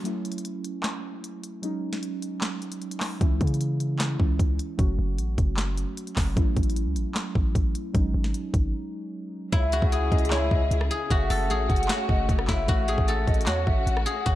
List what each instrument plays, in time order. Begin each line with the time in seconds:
0.03 synth keys F#3 A3 C#4 E4, closed hi-hat
0.25 closed hi-hat
0.32 closed hi-hat
0.38 closed hi-hat
0.45 closed hi-hat
0.64 closed hi-hat
0.83 snare, clap, closed hi-hat
1.24 closed hi-hat
1.43 closed hi-hat
1.62 synth keys F#3 G#3 C#4 D#4, closed hi-hat
1.93 snare
2.03 closed hi-hat
2.22 closed hi-hat
2.41 snare, clap, closed hi-hat
2.62 closed hi-hat
2.72 closed hi-hat
2.82 closed hi-hat
2.91 closed hi-hat
3.00 snare, clap, open hi-hat
3.20 808-style bass C#2, synth keys E3 G#3 C#4 E4, kick, closed hi-hat
3.41 808-style bass C#3, kick, closed hi-hat
3.47 closed hi-hat
3.54 closed hi-hat
3.61 closed hi-hat
3.80 closed hi-hat
3.99 snare, clap, closed hi-hat
4.19 808-style bass C#2, synth keys E3 G#3 C#4 E4, kick
4.39 808-style bass C#2, kick, closed hi-hat
4.59 closed hi-hat
4.77 808-style bass F#1, synth keys F#3 A3 C#4 F#4, kick, closed hi-hat
4.99 808-style bass F#1
5.18 808-style bass A1, closed hi-hat
5.38 808-style bass F#1, kick, closed hi-hat
5.57 snare, clap, closed hi-hat
5.77 closed hi-hat
5.97 closed hi-hat
6.07 closed hi-hat
6.16 808-style bass F#1, kick, snare, clap, open hi-hat
6.35 808-style bass A1, synth keys F#3 A3 C#4 E4, kick, closed hi-hat
6.57 808-style bass A1, kick, closed hi-hat
6.63 closed hi-hat
6.70 closed hi-hat
6.76 closed hi-hat
6.86 808-style bass C#2
6.96 808-style bass A1, closed hi-hat
7.15 snare, clap, closed hi-hat
7.35 808-style bass A1, kick
7.55 808-style bass A1, kick, closed hi-hat
7.75 closed hi-hat
7.94 808-style bass G#1, synth keys F#3 G#3 C#4 D#4, kick, closed hi-hat
8.14 808-style bass G#1
8.24 snare
8.34 closed hi-hat
8.54 808-style bass G#1, kick, closed hi-hat
9.52 808-style bass C#2, string section C#3 C#4 E4 G#4, guzheng E4, soft synth lead E5, kick, closed hi-hat
9.72 guzheng F#4, closed hi-hat
9.82 808-style bass C#2, kick
9.92 guzheng G#4, closed hi-hat
10.12 808-style bass C#2, soft synth lead D#5, kick, closed hi-hat
10.18 closed hi-hat
10.25 closed hi-hat
10.31 guzheng E4, soft synth lead C#5, snare, clap, closed hi-hat
10.51 808-style bass C#2, soft synth lead D#5, kick
10.71 808-style bass C#2, closed hi-hat
10.81 cross-stick
10.91 guzheng G#4, closed hi-hat
11.10 808-style bass F#1, string section A3 F#4, guzheng F#4, soft synth lead E5, kick, closed hi-hat
11.30 808-style bass F#1, guzheng A4, open hi-hat
11.50 808-style bass A1, guzheng G#4, closed hi-hat
11.70 808-style bass F#1, soft synth lead F#5, kick, closed hi-hat
11.76 closed hi-hat
11.83 closed hi-hat
11.89 guzheng F#4, snare, clap, closed hi-hat
12.09 808-style bass F#1, soft synth lead D#5, kick
12.29 808-style bass F#1, kick, closed hi-hat
12.39 cross-stick
12.48 808-style bass F#1, guzheng E4, kick, snare, clap, closed hi-hat
12.68 808-style bass A1, string section F#4, guzheng F#4, soft synth lead E5, kick, closed hi-hat
12.88 guzheng G#4, closed hi-hat
12.98 808-style bass A1, kick
13.08 guzheng A4, closed hi-hat
13.27 808-style bass A1, soft synth lead D#5, kick, closed hi-hat
13.34 closed hi-hat
13.41 closed hi-hat
13.46 808-style bass E2, guzheng F#4, soft synth lead C#5, snare, clap, closed hi-hat
13.67 808-style bass A1, soft synth lead E5, kick
13.87 808-style bass A1, closed hi-hat
13.97 cross-stick
14.06 guzheng G#4, closed hi-hat
14.26 808-style bass G#1, string section G#3, guzheng F#4, soft synth lead F#5, kick, closed hi-hat